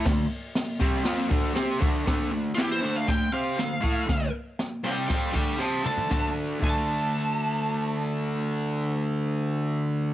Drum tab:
CC |----------------|x---------------|----------------|----x-----------|
RD |x-x-x-x-x-x-x-x-|----------------|----------------|----------------|
HH |----------------|----o---o---o---|o---o---o-------|----------------|
SD |o---o---o---o---|o---o---o---o---|o---o---o---o---|o---------------|
T2 |----------------|----------------|--------------o-|----------------|
FT |----------------|----------------|---------------o|----------------|
BD |o-----o---o---o-|o-------o-----o-|o-------o-o-----|o---o-----------|

CC |----------------|
RD |----------------|
HH |----------------|
SD |----------------|
T2 |----------------|
FT |----------------|
BD |----------------|